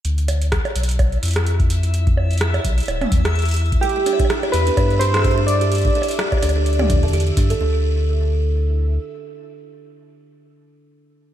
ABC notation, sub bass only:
X:1
M:4/4
L:1/8
Q:"Swing 16ths" 1/4=127
K:Ddor
V:1 name="Sub bass" clef=bass
D,,2 z B,,,2 F,,3- | F,,3 B,,, D,,, E,,3 | z3 E,, G,,4- | G,, z2 D,,2 E,,2 G,, |
D,,6 z2 | z8 |]